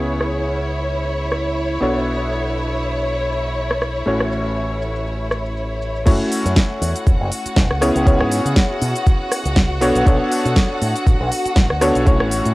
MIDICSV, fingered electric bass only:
0, 0, Header, 1, 3, 480
1, 0, Start_track
1, 0, Tempo, 500000
1, 63, Time_signature, 4, 2, 24, 8
1, 12039, End_track
2, 0, Start_track
2, 0, Title_t, "Fingered electric bass"
2, 0, Program_c, 0, 33
2, 0, Note_on_c, 0, 37, 75
2, 1722, Note_off_c, 0, 37, 0
2, 1743, Note_on_c, 0, 35, 76
2, 3882, Note_off_c, 0, 35, 0
2, 3903, Note_on_c, 0, 33, 85
2, 5802, Note_off_c, 0, 33, 0
2, 5824, Note_on_c, 0, 30, 100
2, 5929, Note_off_c, 0, 30, 0
2, 6196, Note_on_c, 0, 42, 83
2, 6281, Note_off_c, 0, 42, 0
2, 6543, Note_on_c, 0, 40, 88
2, 6649, Note_off_c, 0, 40, 0
2, 6785, Note_on_c, 0, 28, 83
2, 6890, Note_off_c, 0, 28, 0
2, 6918, Note_on_c, 0, 30, 100
2, 7002, Note_off_c, 0, 30, 0
2, 7265, Note_on_c, 0, 28, 99
2, 7370, Note_off_c, 0, 28, 0
2, 7397, Note_on_c, 0, 37, 92
2, 7581, Note_off_c, 0, 37, 0
2, 7637, Note_on_c, 0, 37, 110
2, 7875, Note_on_c, 0, 44, 92
2, 7889, Note_off_c, 0, 37, 0
2, 8060, Note_off_c, 0, 44, 0
2, 8114, Note_on_c, 0, 49, 82
2, 8200, Note_off_c, 0, 49, 0
2, 8462, Note_on_c, 0, 47, 91
2, 8569, Note_off_c, 0, 47, 0
2, 9075, Note_on_c, 0, 37, 82
2, 9422, Note_off_c, 0, 37, 0
2, 9422, Note_on_c, 0, 35, 92
2, 9528, Note_off_c, 0, 35, 0
2, 9556, Note_on_c, 0, 35, 89
2, 9641, Note_off_c, 0, 35, 0
2, 9664, Note_on_c, 0, 35, 102
2, 9769, Note_off_c, 0, 35, 0
2, 10036, Note_on_c, 0, 47, 82
2, 10121, Note_off_c, 0, 47, 0
2, 10383, Note_on_c, 0, 45, 88
2, 10489, Note_off_c, 0, 45, 0
2, 10624, Note_on_c, 0, 33, 86
2, 10729, Note_off_c, 0, 33, 0
2, 10756, Note_on_c, 0, 35, 102
2, 10841, Note_off_c, 0, 35, 0
2, 11104, Note_on_c, 0, 33, 93
2, 11209, Note_off_c, 0, 33, 0
2, 11235, Note_on_c, 0, 38, 96
2, 11420, Note_off_c, 0, 38, 0
2, 11475, Note_on_c, 0, 35, 104
2, 11716, Note_off_c, 0, 35, 0
2, 11716, Note_on_c, 0, 33, 92
2, 11901, Note_off_c, 0, 33, 0
2, 11956, Note_on_c, 0, 45, 81
2, 12039, Note_off_c, 0, 45, 0
2, 12039, End_track
3, 0, Start_track
3, 0, Title_t, "Muted fingered electric bass strokes"
3, 7157, Note_on_c, 9, 29, 44
3, 7253, Note_off_c, 9, 29, 0
3, 10996, Note_on_c, 9, 29, 43
3, 11092, Note_off_c, 9, 29, 0
3, 12039, End_track
0, 0, End_of_file